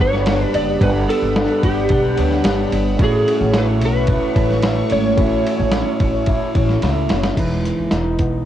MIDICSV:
0, 0, Header, 1, 7, 480
1, 0, Start_track
1, 0, Tempo, 546448
1, 716, Time_signature, 4, 2, 24, 8
1, 7424, End_track
2, 0, Start_track
2, 0, Title_t, "Analog synth pad"
2, 0, Program_c, 0, 89
2, 0, Note_on_c, 0, 55, 81
2, 0, Note_on_c, 0, 78, 72
2, 0, Note_on_c, 0, 83, 86
2, 2600, Note_off_c, 0, 83, 0
2, 2601, Note_off_c, 0, 55, 0
2, 2611, Note_on_c, 0, 85, 92
2, 2617, Note_on_c, 0, 57, 81
2, 6429, Note_off_c, 0, 85, 0
2, 6432, Note_off_c, 0, 57, 0
2, 6442, Note_off_c, 0, 78, 0
2, 7424, End_track
3, 0, Start_track
3, 0, Title_t, "Electric slide guitar"
3, 0, Program_c, 1, 29
3, 8, Note_on_c, 1, 73, 102
3, 478, Note_off_c, 1, 73, 0
3, 481, Note_on_c, 1, 74, 105
3, 726, Note_off_c, 1, 74, 0
3, 727, Note_on_c, 1, 71, 100
3, 791, Note_off_c, 1, 71, 0
3, 958, Note_on_c, 1, 69, 102
3, 1438, Note_off_c, 1, 69, 0
3, 1441, Note_on_c, 1, 67, 80
3, 2363, Note_off_c, 1, 67, 0
3, 2669, Note_on_c, 1, 68, 86
3, 3146, Note_off_c, 1, 68, 0
3, 3147, Note_on_c, 1, 71, 100
3, 3207, Note_off_c, 1, 71, 0
3, 3383, Note_on_c, 1, 71, 97
3, 4320, Note_off_c, 1, 71, 0
3, 4324, Note_on_c, 1, 73, 99
3, 5965, Note_off_c, 1, 73, 0
3, 7424, End_track
4, 0, Start_track
4, 0, Title_t, "Tine electric piano"
4, 0, Program_c, 2, 4
4, 0, Control_c, 2, 64, 127
4, 0, Note_on_c, 2, 55, 66
4, 0, Note_on_c, 2, 59, 60
4, 0, Note_on_c, 2, 62, 57
4, 0, Note_on_c, 2, 66, 61
4, 0, Note_on_c, 2, 71, 77
4, 669, Note_off_c, 2, 55, 0
4, 675, Note_off_c, 2, 59, 0
4, 680, Note_off_c, 2, 62, 0
4, 686, Note_off_c, 2, 66, 0
4, 691, Note_off_c, 2, 71, 0
4, 691, Note_on_c, 2, 55, 69
4, 698, Note_on_c, 2, 59, 62
4, 712, Note_on_c, 2, 62, 65
4, 724, Note_on_c, 2, 78, 62
4, 734, Note_on_c, 2, 71, 73
4, 1879, Note_off_c, 2, 55, 0
4, 1883, Note_off_c, 2, 59, 0
4, 1890, Note_off_c, 2, 62, 0
4, 1894, Note_on_c, 2, 55, 55
4, 1896, Note_off_c, 2, 78, 0
4, 1901, Note_off_c, 2, 71, 0
4, 1901, Note_on_c, 2, 59, 51
4, 1905, Note_on_c, 2, 62, 49
4, 1911, Note_on_c, 2, 78, 50
4, 1919, Note_on_c, 2, 73, 57
4, 2605, Note_on_c, 2, 57, 70
4, 2617, Note_on_c, 2, 61, 62
4, 2625, Note_off_c, 2, 55, 0
4, 2628, Note_off_c, 2, 59, 0
4, 2630, Note_off_c, 2, 62, 0
4, 2631, Note_on_c, 2, 64, 65
4, 2633, Note_off_c, 2, 78, 0
4, 2637, Note_off_c, 2, 73, 0
4, 2639, Note_on_c, 2, 66, 65
4, 2645, Control_c, 2, 64, 0
4, 2652, Note_on_c, 2, 73, 76
4, 2815, Control_c, 2, 64, 127
4, 4505, Note_off_c, 2, 57, 0
4, 4510, Note_off_c, 2, 61, 0
4, 4518, Note_off_c, 2, 64, 0
4, 4522, Note_off_c, 2, 66, 0
4, 4528, Note_off_c, 2, 73, 0
4, 4528, Note_on_c, 2, 57, 68
4, 4540, Note_on_c, 2, 61, 62
4, 4552, Note_on_c, 2, 64, 65
4, 4558, Note_on_c, 2, 66, 63
4, 4575, Note_on_c, 2, 76, 77
4, 6428, Note_off_c, 2, 57, 0
4, 6434, Note_off_c, 2, 61, 0
4, 6440, Note_off_c, 2, 64, 0
4, 6443, Note_off_c, 2, 66, 0
4, 6452, Note_off_c, 2, 76, 0
4, 6458, Note_on_c, 2, 56, 63
4, 6475, Note_on_c, 2, 63, 63
4, 6488, Control_c, 2, 64, 0
4, 6490, Note_on_c, 2, 64, 62
4, 6500, Note_on_c, 2, 71, 77
4, 6662, Control_c, 2, 64, 127
4, 7424, Note_off_c, 2, 56, 0
4, 7424, Note_off_c, 2, 63, 0
4, 7424, Note_off_c, 2, 64, 0
4, 7424, Note_off_c, 2, 71, 0
4, 7424, End_track
5, 0, Start_track
5, 0, Title_t, "Clean electric guitar"
5, 0, Program_c, 3, 27
5, 0, Note_on_c, 3, 43, 90
5, 0, Note_on_c, 3, 59, 62
5, 0, Note_on_c, 3, 62, 74
5, 216, Note_off_c, 3, 62, 0
5, 227, Note_on_c, 3, 62, 74
5, 455, Note_off_c, 3, 59, 0
5, 465, Note_on_c, 3, 59, 60
5, 698, Note_off_c, 3, 43, 0
5, 708, Note_on_c, 3, 43, 88
5, 936, Note_off_c, 3, 59, 0
5, 946, Note_on_c, 3, 59, 67
5, 1187, Note_off_c, 3, 62, 0
5, 1197, Note_on_c, 3, 62, 75
5, 1425, Note_off_c, 3, 59, 0
5, 1435, Note_on_c, 3, 59, 62
5, 1659, Note_off_c, 3, 62, 0
5, 1669, Note_on_c, 3, 62, 77
5, 1899, Note_off_c, 3, 59, 0
5, 1910, Note_on_c, 3, 59, 68
5, 2139, Note_off_c, 3, 62, 0
5, 2149, Note_on_c, 3, 62, 72
5, 2370, Note_off_c, 3, 59, 0
5, 2381, Note_on_c, 3, 59, 63
5, 2624, Note_off_c, 3, 43, 0
5, 2628, Note_on_c, 3, 45, 87
5, 2676, Note_off_c, 3, 59, 0
5, 2680, Note_off_c, 3, 62, 0
5, 2872, Note_on_c, 3, 61, 68
5, 3122, Note_on_c, 3, 64, 76
5, 3342, Note_off_c, 3, 61, 0
5, 3353, Note_on_c, 3, 61, 62
5, 3585, Note_off_c, 3, 64, 0
5, 3588, Note_on_c, 3, 64, 75
5, 3813, Note_off_c, 3, 61, 0
5, 3824, Note_on_c, 3, 61, 67
5, 4065, Note_off_c, 3, 64, 0
5, 4068, Note_on_c, 3, 64, 73
5, 4296, Note_off_c, 3, 61, 0
5, 4306, Note_on_c, 3, 61, 63
5, 4540, Note_off_c, 3, 45, 0
5, 4551, Note_on_c, 3, 45, 92
5, 4774, Note_off_c, 3, 61, 0
5, 4784, Note_on_c, 3, 61, 67
5, 5025, Note_off_c, 3, 64, 0
5, 5029, Note_on_c, 3, 64, 74
5, 5270, Note_off_c, 3, 61, 0
5, 5280, Note_on_c, 3, 61, 62
5, 5519, Note_off_c, 3, 64, 0
5, 5522, Note_on_c, 3, 64, 76
5, 5744, Note_off_c, 3, 61, 0
5, 5754, Note_on_c, 3, 61, 65
5, 5994, Note_off_c, 3, 64, 0
5, 5998, Note_on_c, 3, 64, 68
5, 6222, Note_off_c, 3, 61, 0
5, 6233, Note_on_c, 3, 61, 64
5, 6461, Note_on_c, 3, 52, 73
5, 6475, Note_off_c, 3, 45, 0
5, 6523, Note_off_c, 3, 61, 0
5, 6701, Note_on_c, 3, 56, 54
5, 6942, Note_off_c, 3, 64, 0
5, 6945, Note_on_c, 3, 63, 62
5, 7199, Note_on_c, 3, 59, 52
5, 7424, Note_off_c, 3, 52, 0
5, 7424, Note_off_c, 3, 56, 0
5, 7424, Note_off_c, 3, 59, 0
5, 7424, Note_off_c, 3, 63, 0
5, 7424, End_track
6, 0, Start_track
6, 0, Title_t, "Upright bass"
6, 0, Program_c, 4, 32
6, 0, Note_on_c, 4, 31, 103
6, 379, Note_off_c, 4, 31, 0
6, 475, Note_on_c, 4, 30, 85
6, 667, Note_off_c, 4, 30, 0
6, 711, Note_on_c, 4, 31, 108
6, 905, Note_off_c, 4, 31, 0
6, 1074, Note_on_c, 4, 31, 105
6, 1267, Note_off_c, 4, 31, 0
6, 1433, Note_on_c, 4, 31, 103
6, 1626, Note_off_c, 4, 31, 0
6, 1665, Note_on_c, 4, 35, 102
6, 1861, Note_off_c, 4, 35, 0
6, 1916, Note_on_c, 4, 38, 95
6, 2108, Note_off_c, 4, 38, 0
6, 2143, Note_on_c, 4, 31, 98
6, 2340, Note_off_c, 4, 31, 0
6, 2393, Note_on_c, 4, 31, 87
6, 2586, Note_off_c, 4, 31, 0
6, 2629, Note_on_c, 4, 33, 114
6, 2824, Note_off_c, 4, 33, 0
6, 2993, Note_on_c, 4, 33, 103
6, 3347, Note_off_c, 4, 33, 0
6, 3347, Note_on_c, 4, 35, 95
6, 3638, Note_off_c, 4, 35, 0
6, 3827, Note_on_c, 4, 33, 93
6, 4214, Note_off_c, 4, 33, 0
6, 4314, Note_on_c, 4, 32, 94
6, 4507, Note_off_c, 4, 32, 0
6, 4549, Note_on_c, 4, 33, 105
6, 4743, Note_off_c, 4, 33, 0
6, 4914, Note_on_c, 4, 33, 103
6, 5106, Note_off_c, 4, 33, 0
6, 5274, Note_on_c, 4, 33, 98
6, 5563, Note_off_c, 4, 33, 0
6, 5757, Note_on_c, 4, 33, 98
6, 5949, Note_off_c, 4, 33, 0
6, 5994, Note_on_c, 4, 37, 93
6, 6187, Note_off_c, 4, 37, 0
6, 6248, Note_on_c, 4, 30, 93
6, 6436, Note_off_c, 4, 30, 0
6, 6474, Note_on_c, 4, 28, 84
6, 6764, Note_off_c, 4, 28, 0
6, 6840, Note_on_c, 4, 30, 77
6, 6935, Note_off_c, 4, 30, 0
6, 6959, Note_on_c, 4, 28, 86
6, 7151, Note_off_c, 4, 28, 0
6, 7198, Note_on_c, 4, 35, 79
6, 7424, Note_off_c, 4, 35, 0
6, 7424, End_track
7, 0, Start_track
7, 0, Title_t, "Drums"
7, 115, Note_on_c, 9, 38, 38
7, 203, Note_off_c, 9, 38, 0
7, 227, Note_on_c, 9, 51, 73
7, 235, Note_on_c, 9, 38, 124
7, 315, Note_off_c, 9, 51, 0
7, 323, Note_off_c, 9, 38, 0
7, 475, Note_on_c, 9, 51, 62
7, 563, Note_off_c, 9, 51, 0
7, 712, Note_on_c, 9, 36, 121
7, 716, Note_on_c, 9, 51, 90
7, 800, Note_off_c, 9, 36, 0
7, 803, Note_off_c, 9, 51, 0
7, 967, Note_on_c, 9, 51, 68
7, 1055, Note_off_c, 9, 51, 0
7, 1194, Note_on_c, 9, 38, 109
7, 1201, Note_on_c, 9, 51, 72
7, 1282, Note_off_c, 9, 38, 0
7, 1289, Note_off_c, 9, 51, 0
7, 1433, Note_on_c, 9, 36, 88
7, 1434, Note_on_c, 9, 51, 66
7, 1521, Note_off_c, 9, 36, 0
7, 1521, Note_off_c, 9, 51, 0
7, 1658, Note_on_c, 9, 51, 75
7, 1669, Note_on_c, 9, 36, 97
7, 1746, Note_off_c, 9, 51, 0
7, 1756, Note_off_c, 9, 36, 0
7, 1910, Note_on_c, 9, 51, 65
7, 1997, Note_off_c, 9, 51, 0
7, 2028, Note_on_c, 9, 38, 38
7, 2116, Note_off_c, 9, 38, 0
7, 2142, Note_on_c, 9, 51, 76
7, 2150, Note_on_c, 9, 38, 121
7, 2230, Note_off_c, 9, 51, 0
7, 2238, Note_off_c, 9, 38, 0
7, 2392, Note_on_c, 9, 51, 63
7, 2479, Note_off_c, 9, 51, 0
7, 2627, Note_on_c, 9, 36, 120
7, 2628, Note_on_c, 9, 51, 86
7, 2715, Note_off_c, 9, 36, 0
7, 2716, Note_off_c, 9, 51, 0
7, 2880, Note_on_c, 9, 51, 63
7, 2968, Note_off_c, 9, 51, 0
7, 3106, Note_on_c, 9, 38, 116
7, 3113, Note_on_c, 9, 51, 70
7, 3194, Note_off_c, 9, 38, 0
7, 3201, Note_off_c, 9, 51, 0
7, 3351, Note_on_c, 9, 51, 63
7, 3439, Note_off_c, 9, 51, 0
7, 3575, Note_on_c, 9, 51, 73
7, 3585, Note_on_c, 9, 36, 104
7, 3663, Note_off_c, 9, 51, 0
7, 3673, Note_off_c, 9, 36, 0
7, 3829, Note_on_c, 9, 36, 85
7, 3830, Note_on_c, 9, 51, 63
7, 3917, Note_off_c, 9, 36, 0
7, 3918, Note_off_c, 9, 51, 0
7, 3957, Note_on_c, 9, 38, 38
7, 4045, Note_off_c, 9, 38, 0
7, 4062, Note_on_c, 9, 51, 76
7, 4070, Note_on_c, 9, 38, 117
7, 4150, Note_off_c, 9, 51, 0
7, 4158, Note_off_c, 9, 38, 0
7, 4302, Note_on_c, 9, 51, 64
7, 4390, Note_off_c, 9, 51, 0
7, 4546, Note_on_c, 9, 36, 114
7, 4547, Note_on_c, 9, 51, 88
7, 4634, Note_off_c, 9, 36, 0
7, 4635, Note_off_c, 9, 51, 0
7, 4801, Note_on_c, 9, 51, 63
7, 4889, Note_off_c, 9, 51, 0
7, 5020, Note_on_c, 9, 38, 120
7, 5027, Note_on_c, 9, 51, 71
7, 5108, Note_off_c, 9, 38, 0
7, 5115, Note_off_c, 9, 51, 0
7, 5270, Note_on_c, 9, 51, 59
7, 5272, Note_on_c, 9, 36, 95
7, 5358, Note_off_c, 9, 51, 0
7, 5359, Note_off_c, 9, 36, 0
7, 5501, Note_on_c, 9, 51, 73
7, 5510, Note_on_c, 9, 36, 96
7, 5589, Note_off_c, 9, 51, 0
7, 5598, Note_off_c, 9, 36, 0
7, 5754, Note_on_c, 9, 51, 64
7, 5755, Note_on_c, 9, 36, 86
7, 5842, Note_off_c, 9, 51, 0
7, 5843, Note_off_c, 9, 36, 0
7, 5877, Note_on_c, 9, 38, 38
7, 5965, Note_off_c, 9, 38, 0
7, 5992, Note_on_c, 9, 51, 76
7, 6002, Note_on_c, 9, 38, 62
7, 6080, Note_off_c, 9, 51, 0
7, 6090, Note_off_c, 9, 38, 0
7, 6229, Note_on_c, 9, 51, 61
7, 6237, Note_on_c, 9, 38, 96
7, 6317, Note_off_c, 9, 51, 0
7, 6325, Note_off_c, 9, 38, 0
7, 6355, Note_on_c, 9, 38, 102
7, 6443, Note_off_c, 9, 38, 0
7, 6475, Note_on_c, 9, 36, 102
7, 6476, Note_on_c, 9, 49, 77
7, 6477, Note_on_c, 9, 42, 84
7, 6563, Note_off_c, 9, 36, 0
7, 6563, Note_off_c, 9, 49, 0
7, 6565, Note_off_c, 9, 42, 0
7, 6723, Note_on_c, 9, 42, 63
7, 6811, Note_off_c, 9, 42, 0
7, 6949, Note_on_c, 9, 38, 102
7, 6956, Note_on_c, 9, 42, 74
7, 7037, Note_off_c, 9, 38, 0
7, 7044, Note_off_c, 9, 42, 0
7, 7192, Note_on_c, 9, 42, 66
7, 7196, Note_on_c, 9, 36, 83
7, 7280, Note_off_c, 9, 42, 0
7, 7284, Note_off_c, 9, 36, 0
7, 7424, End_track
0, 0, End_of_file